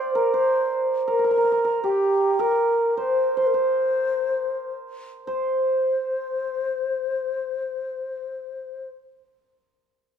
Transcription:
Already playing: C5 D5 F5 G5
0.15 A#4
0.34 C5
1.08 A#4
1.19 A#4
1.24 A#4
1.31 A#4
1.37 A#4
1.44 A#4
1.52 A#4
1.64 A#4
1.84 G4
2.39 A#4
2.97 C5
3.37 C5
3.41 C5
3.47 A#4
3.54 C5
5.26 C5

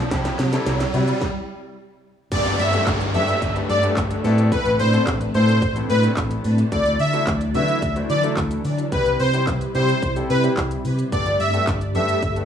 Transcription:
Already playing: riser
0.11 C2 C3 G3 C4 E4 G4, kick, snare, closed hi-hat, shaker
0.25 snare, closed hi-hat, shaker
0.39 C3, snare, open hi-hat, shaker
0.52 G3 C4 E4 A4, snare, closed hi-hat, shaker
0.66 C2, snare, closed hi-hat, shaker
0.80 snare, closed hi-hat, shaker
0.94 C3 G3 C4 E4 F#4, open hi-hat, shaker
1.08 closed hi-hat, shaker
1.21 kick, snare
2.32 G1 G3 A3 B3 D4 G4 A4 D5, kick, closed hi-hat, crash, downlifter, shaker
2.45 G1, closed hi-hat, shaker
2.59 G2 E5, open hi-hat, shaker
2.73 A3 B3 D4 G4 A4, closed hi-hat, shaker
2.87 G1, kick, clap, closed hi-hat, shaker
3.01 closed hi-hat, shaker
3.14 G2 A3 B3 D4 G4 A4 E5, open hi-hat, shaker
3.28 closed hi-hat, shaker
3.42 G1, kick, closed hi-hat, shaker
3.55 A3 B3 D4 G4 A4, closed hi-hat, shaker
3.69 G2 D5, open hi-hat, shaker
3.83 A3 B3 D4 G4 A4, closed hi-hat, shaker
3.97 G1, kick, clap, closed hi-hat, shaker
4.11 closed hi-hat, shaker
4.24 A2 C3 A3 B3 C4 E4 A4, open hi-hat, shaker
4.38 closed hi-hat, shaker
4.52 B4, kick, closed hi-hat, shaker
4.66 A1, closed hi-hat, shaker
4.79 A2 C5, open hi-hat, shaker
4.93 A3 B3 C4 E4 A4, closed hi-hat, shaker
5.07 A1, kick, clap, closed hi-hat, shaker
5.21 closed hi-hat, shaker
5.34 A2 A3 B3 C4 E4 A4 C5, open hi-hat, shaker
5.48 closed hi-hat, shaker
5.62 A1, kick, closed hi-hat, shaker
5.75 A3 B3 C4 E4 A4, closed hi-hat, shaker
5.89 A2 B4, open hi-hat, shaker
6.03 A3 B3 C4 E4 B4, closed hi-hat, shaker
6.17 A1, kick, clap, closed hi-hat, shaker
6.31 closed hi-hat, shaker
6.44 A2, open hi-hat, shaker
6.58 closed hi-hat, shaker
6.72 D2 E3 F#3 A3 D4 E4 F#4 A4 D5, kick, closed hi-hat, shaker
6.86 D2, closed hi-hat, shaker
6.99 D3 E5, open hi-hat, shaker
7.13 A3 D4 E4 F#4 A4, closed hi-hat, shaker
7.27 D2, kick, clap, closed hi-hat, shaker
7.41 closed hi-hat, shaker
7.54 D3 A3 D4 E4 F#4 B4 E5, open hi-hat, shaker
7.68 closed hi-hat, shaker
7.82 D2, kick, closed hi-hat, shaker
7.96 A3 D4 E4 F#4 C5, closed hi-hat, shaker
8.10 D3 D5, open hi-hat, shaker
8.23 A3 D4 E4 F#4 A4, closed hi-hat, shaker
8.37 D2, kick, clap, closed hi-hat, shaker
8.51 closed hi-hat, shaker
8.65 D3, open hi-hat, shaker
8.78 closed hi-hat, shaker
8.92 C2 C3 G3 C4 E4 G4 B4 C5, kick, closed hi-hat, shaker
9.06 C2, closed hi-hat, shaker
9.20 C3 C5, open hi-hat, shaker
9.33 G3 C4 E4 G4 C5, closed hi-hat, shaker
9.47 C2, kick, clap, closed hi-hat, shaker
9.61 closed hi-hat, shaker
9.75 C3 G3 C4 E4 G4 C5, open hi-hat, shaker
9.89 closed hi-hat, shaker
10.02 C2, kick, closed hi-hat, shaker
10.16 G3 C4 E4 G4 A4, closed hi-hat, shaker
10.30 C3 B4, open hi-hat, shaker
10.43 G3 C4 E4 G4 C5, closed hi-hat, shaker
10.57 C2, kick, clap, closed hi-hat, shaker
10.71 closed hi-hat, shaker
10.85 C3, open hi-hat, shaker
10.99 closed hi-hat, shaker
11.12 G1 G3 A3 B3 D4 G4 A4 D5, kick, closed hi-hat, shaker
11.26 G1, closed hi-hat, shaker
11.40 G2 E5, open hi-hat, shaker
11.54 A3 B3 D4 G4 A4, closed hi-hat, shaker
11.67 G1, kick, clap, closed hi-hat, shaker
11.81 closed hi-hat, shaker
11.95 G2 A3 B3 D4 G4 A4 E5, open hi-hat, shaker
12.09 closed hi-hat, shaker
12.22 G1, kick, closed hi-hat, shaker
12.36 A3 B3 D4 G4 A4, closed hi-hat, shaker

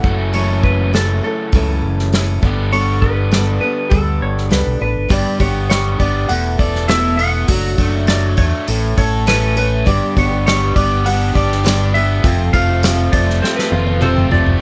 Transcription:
Already playing: F#5
0.03 F#1 F#2 C#3 E3 F#3 A3 C#4 A4, kick
0.33 F#2 C#3 E3 A3 C#4 A4 C#5, open hi-hat
0.63 B4, kick
0.93 E3 A3 C#4 A4, snare, open hi-hat
1.23 E3 A3 C#4 A4
1.52 C#2 F#2 C#3 E3 A3 C#4 A4, kick, open hi-hat
1.82 F#1
1.99 snare
2.13 E3 A3 C#4 A4, snare, open hi-hat
2.42 G1 G2 D3 G3 B3 D4 A4, kick
2.46 G4
2.72 G3 B3 D4 A4 C#5, open hi-hat
3.02 B4, kick
3.31 G3 B3 D4 A4, snare, open hi-hat
3.61 B3 D4 A4 B4
3.90 D2 G3 B3 D4 A4, kick, open hi-hat
4.22 G1 C#5
4.38 snare
4.49 C#2 G3 B3 D4 G4 A4 B4, snare, open hi-hat
4.67 B1
4.79 A1 B3 D4 A4 B4
4.96 G1
5.08 G1 G2 D3 G3 B3 D4 G4 D5, kick, open hi-hat
5.40 G1 G2 D3 G3 B3 D4 G4 C#5, kick, open hi-hat
5.70 G3 C#5, snare, open hi-hat
5.99 G1 G3 B3 D4 G4 D5, kick, open hi-hat
6.28 E1 E2 E3 A3 B3 A4 F#5, open hi-hat
6.57 E1 E3 A3 B3 A4 D5, kick, open hi-hat
6.75 snare
6.88 E2 B2 E3 A3 B3 E4 A4 E5, snare, open hi-hat
7.17 E3 A3 B3 A4 F#5, open hi-hat
7.47 F#1 F#3 A3 D4 F#4, kick, open hi-hat
7.77 F#1 F#3 A3 D4 F#4, kick, open hi-hat
8.07 F#3 D5, snare, open hi-hat
8.37 E2 A3 D4 F#4 C#5, kick, open hi-hat
8.67 A1 A2 E3 A3 C#4 A4, open hi-hat
8.97 A1 A3 C#4 A4 C#5, kick, open hi-hat
9.26 A2 E3 A3 C#4 A4 B4, snare, open hi-hat
9.57 A3 C#4 A4 B4, open hi-hat
9.85 G1 G2 D3 G3 B3 D4 G4 B4 D5, kick, open hi-hat
10.16 G1 G2 D3 G3 B3 D4 G4 C#5, kick, open hi-hat
10.28 D4 G4 B4
10.46 G3 C#5, snare, open hi-hat
10.74 G1 G3 B3 D4 G4 D5, kick, open hi-hat
11.04 G3 B3 D4 G4 F#5, open hi-hat
11.33 G1 G3 B3 D4 G4 D5, kick, open hi-hat
11.52 snare
11.63 G2 D3 G3 B3 D4 G4 B4, snare, open hi-hat
11.93 G3 B3 D4 G4 E5, open hi-hat
12.22 F1 F2 C3 F3 A3 C4 F4 A4, kick, open hi-hat
12.53 F1 F2 C3 F3 A3 C4 F4 F5, kick, open hi-hat
12.68 C4 F4 C5
12.83 F3, snare, open hi-hat
13.12 F1 F3 A3 C4 F4 D5, kick, open hi-hat
13.30 snare
13.42 F3 A3 C4 F4 C5, snare
13.56 B4, snare
13.71 F1 F3 A3 C4 F4, high tom
13.86 high tom
14.01 F2 C3 F3 A3 C4 F4 G4 A4 C5, mid tom
14.16 mid tom
14.30 F3 A3 C4 F4 D5, floor tom
14.46 floor tom

